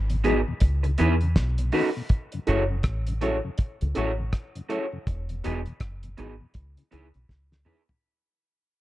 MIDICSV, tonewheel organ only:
0, 0, Header, 1, 2, 480
1, 0, Start_track
1, 0, Tempo, 741473
1, 1358, Time_signature, 4, 2, 24, 8
1, 5702, End_track
2, 0, Start_track
2, 0, Title_t, "Tonewheel organ"
2, 0, Program_c, 0, 16
2, 65, Note_on_c, 0, 47, 59
2, 67, Note_on_c, 0, 40, 59
2, 106, Note_off_c, 0, 40, 0
2, 106, Note_off_c, 0, 47, 0
2, 161, Note_on_c, 0, 56, 78
2, 162, Note_on_c, 0, 52, 78
2, 165, Note_on_c, 0, 63, 98
2, 222, Note_off_c, 0, 56, 0
2, 223, Note_off_c, 0, 52, 0
2, 224, Note_off_c, 0, 63, 0
2, 311, Note_on_c, 0, 40, 64
2, 311, Note_on_c, 0, 47, 63
2, 348, Note_off_c, 0, 40, 0
2, 348, Note_off_c, 0, 47, 0
2, 552, Note_on_c, 0, 49, 63
2, 589, Note_off_c, 0, 49, 0
2, 649, Note_on_c, 0, 52, 82
2, 650, Note_on_c, 0, 59, 78
2, 650, Note_on_c, 0, 61, 87
2, 706, Note_off_c, 0, 52, 0
2, 707, Note_off_c, 0, 59, 0
2, 707, Note_off_c, 0, 61, 0
2, 794, Note_on_c, 0, 49, 64
2, 830, Note_off_c, 0, 49, 0
2, 1031, Note_on_c, 0, 47, 55
2, 1068, Note_off_c, 0, 47, 0
2, 1120, Note_on_c, 0, 51, 82
2, 1124, Note_on_c, 0, 57, 72
2, 1125, Note_on_c, 0, 59, 87
2, 1182, Note_off_c, 0, 51, 0
2, 1184, Note_off_c, 0, 57, 0
2, 1184, Note_off_c, 0, 59, 0
2, 1272, Note_on_c, 0, 47, 58
2, 1309, Note_off_c, 0, 47, 0
2, 1513, Note_on_c, 0, 42, 53
2, 1513, Note_on_c, 0, 49, 58
2, 1549, Note_off_c, 0, 42, 0
2, 1550, Note_off_c, 0, 49, 0
2, 1610, Note_on_c, 0, 54, 73
2, 1610, Note_on_c, 0, 57, 63
2, 1612, Note_on_c, 0, 64, 79
2, 1666, Note_off_c, 0, 54, 0
2, 1666, Note_off_c, 0, 57, 0
2, 1668, Note_off_c, 0, 64, 0
2, 1750, Note_on_c, 0, 49, 61
2, 1752, Note_on_c, 0, 42, 62
2, 1788, Note_off_c, 0, 49, 0
2, 1789, Note_off_c, 0, 42, 0
2, 1997, Note_on_c, 0, 49, 61
2, 1998, Note_on_c, 0, 42, 56
2, 2031, Note_off_c, 0, 49, 0
2, 2032, Note_off_c, 0, 42, 0
2, 2082, Note_on_c, 0, 54, 74
2, 2085, Note_on_c, 0, 57, 75
2, 2086, Note_on_c, 0, 64, 87
2, 2143, Note_off_c, 0, 54, 0
2, 2144, Note_off_c, 0, 57, 0
2, 2145, Note_off_c, 0, 64, 0
2, 2230, Note_on_c, 0, 49, 62
2, 2231, Note_on_c, 0, 42, 60
2, 2268, Note_off_c, 0, 42, 0
2, 2268, Note_off_c, 0, 49, 0
2, 2471, Note_on_c, 0, 42, 60
2, 2471, Note_on_c, 0, 49, 58
2, 2508, Note_off_c, 0, 42, 0
2, 2508, Note_off_c, 0, 49, 0
2, 2564, Note_on_c, 0, 54, 78
2, 2565, Note_on_c, 0, 57, 74
2, 2567, Note_on_c, 0, 64, 90
2, 2624, Note_off_c, 0, 54, 0
2, 2624, Note_off_c, 0, 57, 0
2, 2625, Note_off_c, 0, 64, 0
2, 2708, Note_on_c, 0, 49, 55
2, 2709, Note_on_c, 0, 42, 62
2, 2747, Note_off_c, 0, 42, 0
2, 2747, Note_off_c, 0, 49, 0
2, 2947, Note_on_c, 0, 42, 56
2, 2949, Note_on_c, 0, 49, 58
2, 2986, Note_off_c, 0, 42, 0
2, 2987, Note_off_c, 0, 49, 0
2, 3042, Note_on_c, 0, 57, 70
2, 3044, Note_on_c, 0, 54, 75
2, 3047, Note_on_c, 0, 64, 84
2, 3102, Note_off_c, 0, 57, 0
2, 3103, Note_off_c, 0, 54, 0
2, 3105, Note_off_c, 0, 64, 0
2, 3189, Note_on_c, 0, 42, 59
2, 3189, Note_on_c, 0, 49, 56
2, 3227, Note_off_c, 0, 42, 0
2, 3227, Note_off_c, 0, 49, 0
2, 3432, Note_on_c, 0, 40, 55
2, 3433, Note_on_c, 0, 47, 58
2, 3469, Note_off_c, 0, 40, 0
2, 3469, Note_off_c, 0, 47, 0
2, 3526, Note_on_c, 0, 52, 76
2, 3528, Note_on_c, 0, 56, 65
2, 3529, Note_on_c, 0, 63, 78
2, 3584, Note_off_c, 0, 52, 0
2, 3585, Note_off_c, 0, 56, 0
2, 3586, Note_off_c, 0, 63, 0
2, 3671, Note_on_c, 0, 47, 60
2, 3672, Note_on_c, 0, 40, 58
2, 3708, Note_off_c, 0, 47, 0
2, 3709, Note_off_c, 0, 40, 0
2, 3908, Note_on_c, 0, 47, 55
2, 3909, Note_on_c, 0, 40, 60
2, 3946, Note_off_c, 0, 47, 0
2, 3947, Note_off_c, 0, 40, 0
2, 3998, Note_on_c, 0, 52, 76
2, 4002, Note_on_c, 0, 63, 80
2, 4003, Note_on_c, 0, 56, 72
2, 4060, Note_off_c, 0, 52, 0
2, 4062, Note_off_c, 0, 63, 0
2, 4063, Note_off_c, 0, 56, 0
2, 4147, Note_on_c, 0, 47, 59
2, 4148, Note_on_c, 0, 40, 58
2, 4186, Note_off_c, 0, 40, 0
2, 4186, Note_off_c, 0, 47, 0
2, 4383, Note_on_c, 0, 49, 55
2, 4424, Note_off_c, 0, 49, 0
2, 4474, Note_on_c, 0, 52, 77
2, 4478, Note_on_c, 0, 59, 75
2, 4479, Note_on_c, 0, 61, 85
2, 4538, Note_off_c, 0, 52, 0
2, 4540, Note_off_c, 0, 59, 0
2, 4541, Note_off_c, 0, 61, 0
2, 4623, Note_on_c, 0, 49, 60
2, 4664, Note_off_c, 0, 49, 0
2, 4861, Note_on_c, 0, 49, 54
2, 4903, Note_off_c, 0, 49, 0
2, 4960, Note_on_c, 0, 52, 75
2, 4962, Note_on_c, 0, 59, 70
2, 4962, Note_on_c, 0, 61, 80
2, 5021, Note_off_c, 0, 52, 0
2, 5022, Note_off_c, 0, 59, 0
2, 5022, Note_off_c, 0, 61, 0
2, 5106, Note_on_c, 0, 49, 56
2, 5145, Note_off_c, 0, 49, 0
2, 5702, End_track
0, 0, End_of_file